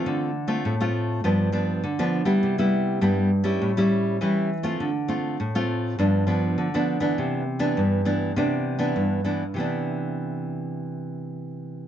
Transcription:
\new Staff \with { instrumentName = "Nylon-string guitar" } { \time 4/4 \key c \major \tempo 4 = 101 << { <a c' f'>8 r16 <a c' f'>8 <a c' f'>8. <f b d'>8 <f b d'>8 r16 <f b d'>8 <g b e'>16~ | <g b e'>16 <g b e'>8. <g b e'>8 r16 <g des' e'>8 <g cis' e'>8. <g cis' e'>8 r16 <a c' f'>16~ | <a c' f'>16 r16 <a c' f'>8 r16 <a c' f'>8. <f b d'>8 <f b d'>8. <f b d'>8 <e b d'>16~ | <e b d'>8 r16 <e b d'>8. <e b d'>8 <e b d'>8. <e b d'>8. <e b d'>16 r16 |
<c e b d'>1 | } \\ { d4 a,4 g,4 d4 | c4 g,4 a,4 e4 | d4 a,4 g,4 d4 | c4 g,4 c4 g,4 |
r1 | } >> }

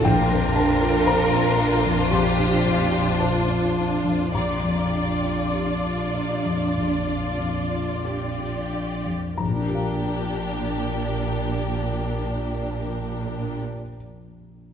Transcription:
<<
  \new Staff \with { instrumentName = "Violin section" } { \time 4/4 \key bes \major \tempo 4 = 48 c''1 | g'4 d'8 ees'8 f'4 g'4 | bes'1 | }
  \new Staff \with { instrumentName = "Cello section" } { \time 4/4 \key bes \major bes'2 g'4 f'8 f'8 | d'2.~ d'8 r8 | bes,1 | }
  \new Staff \with { instrumentName = "Felt piano" } { \time 4/4 \key bes \major << { g''8 a''8 bes''4 c'''4 a''4 | bes''2.~ bes''8 r8 | <bes,, bes, d' f' g' f'' bes''>1 | } \\ { bes,,16 f,16 d'16 f'16 c''16 f'16 d'16 f,16 bes,,16 d'16 f,16 f'16 c''16 f'16 d'16 f,16 | bes,,16 f,16 d'16 f'16 g'16 f'16 d''16 f,16 bes,,16 d'16 f,16 f'16 g'16 f'16 d'16 f,16 | r1 | } >> }
  \new Staff \with { instrumentName = "Violin section" } { \time 4/4 \key bes \major f'1 | f'1 | g'1 | }
  \new Staff \with { instrumentName = "Viola section" } { \time 4/4 \key bes \major d'1 | d''1 | d'1 | }
  \new Staff \with { instrumentName = "Double bass section" } { \clef bass \time 4/4 \key bes \major bes,,1 | bes,,1 | bes,,1 | }
>>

